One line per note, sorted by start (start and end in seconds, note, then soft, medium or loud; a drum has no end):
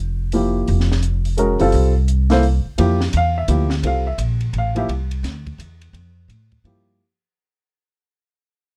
0.00 0.64 F1 medium
0.32 0.86 F3 soft
0.32 0.86 A#3 soft
0.32 0.86 E4 soft
0.32 0.87 G4 medium
0.32 open hi-hat soft
0.68 1.56 F1 medium
0.68 open hi-hat soft
0.80 snare soft
0.92 snare soft
1.03 closed hi-hat soft
1.25 open hi-hat soft
1.37 1.58 G#3 medium
1.37 1.58 C#4 medium
1.37 1.58 F#4 medium
1.37 1.59 A#4 medium
1.37 closed hi-hat soft
1.60 1.73 F#1 medium
1.60 1.91 G3 medium
1.60 1.91 C4 medium
1.60 1.91 F4 medium
1.60 1.92 A4 medium
1.60 open hi-hat soft
1.72 2.62 C2 medium
1.72 open hi-hat soft
2.08 closed hi-hat soft
2.30 2.42 A#3 medium
2.30 2.42 E4 medium
2.30 2.42 A4 medium
2.30 2.43 C5 medium
2.30 snare soft
2.30 open hi-hat soft
2.43 open hi-hat soft
2.65 muted upright bass stroke soft
2.78 3.13 F2 medium
2.78 2.98 F3 medium
2.78 2.98 A#3 soft
2.78 2.99 E4 soft
2.78 2.99 G4 medium
2.78 ride medium
3.01 snare soft
3.13 3.48 E2 medium
3.13 hi-hat pedal soft
3.13 ride medium
3.17 3.37 F5 medium
3.38 3.49 E5 medium
3.48 3.82 D2 medium
3.48 3.68 F3 soft
3.48 3.68 A#3 soft
3.48 3.69 E4 soft
3.48 3.69 G4 medium
3.48 hi-hat pedal medium
3.48 ride medium
3.70 snare medium
3.83 4.17 C2 medium
3.83 4.03 G3 soft
3.83 4.04 C4 soft
3.83 4.04 F4 soft
3.83 4.04 A4 soft
3.83 ride medium
3.87 4.07 F5 medium
4.07 4.19 E5 medium
4.18 4.53 A#1 medium
4.18 hi-hat pedal medium
4.18 ride medium
4.41 ride soft
4.53 4.88 A1 medium
4.53 ride medium
4.58 4.78 F5 medium
4.75 4.87 F3 medium
4.75 4.88 A#3 medium
4.75 4.88 E4 medium
4.75 4.88 G4 medium
4.75 4.86 E5 medium
4.75 ride soft
4.89 5.22 C2 medium
4.89 ride medium
5.11 ride soft
5.23 5.58 D2 medium
5.23 snare soft
5.23 hi-hat pedal soft
5.23 ride medium
5.47 kick soft
5.47 ride soft
5.58 5.93 E2 medium
5.58 hi-hat pedal soft
5.58 ride medium
5.81 ride soft
5.93 6.28 F2 medium
5.93 ride soft
6.28 6.63 A2 medium
6.28 hi-hat pedal soft
6.28 ride medium
6.52 kick soft
6.52 ride soft
6.64 6.98 G2 medium
6.64 7.00 F3 soft
6.64 7.00 A#3 soft
6.64 7.01 E4 soft
6.64 7.01 G4 medium
6.64 ride soft